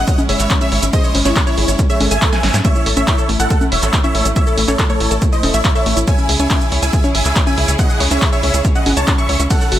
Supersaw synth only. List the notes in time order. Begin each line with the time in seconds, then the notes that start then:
Already playing: D#5 F#5
0.29 C#5 E5
0.61 C#5 E5
0.93 C5 D#5
1.25 E4 C#5
1.47 E4 C#5
1.90 C#5 E5
2.11 E5 G#5
2.33 E5 G#5
2.65 C#5 E5
2.97 C#5 E5
3.40 A4 F#5
3.72 C#5 E5
4.04 C#5 E5
4.36 C#5 E5
4.68 A4 C#5
4.90 A4 C#5
5.33 C5 D#5
5.54 C#5 E5
5.75 C#5 E5
6.07 E5 G#5
6.40 E5 G#5
6.83 E5 G#5
7.15 E5 G#5
7.47 E5 G#5
7.79 D#5 F#5
8.11 C#5 E5
8.33 C#5 E5
8.76 D#5 F#5
8.97 C#5 A5
9.18 E5 C#6
9.50 A4 F#5